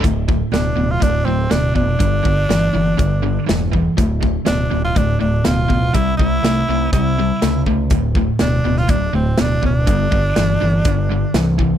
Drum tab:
HH |x---x---x---x---|x---x---x---x---|x---x---x---x---|x---x---x---x---|
SD |----o-------o---|----o-------o---|----o-------o---|----o-------o---|
BD |o-o-----o-----o-|o-o-----o-----o-|o-o-----o-----o-|o-o-----o-----o-|

HH |x---x---x---x---|x---x---x---x---|
SD |----o--o----o---|----o-------o---|
BD |o-o-----o-----o-|o-o-----o-----o-|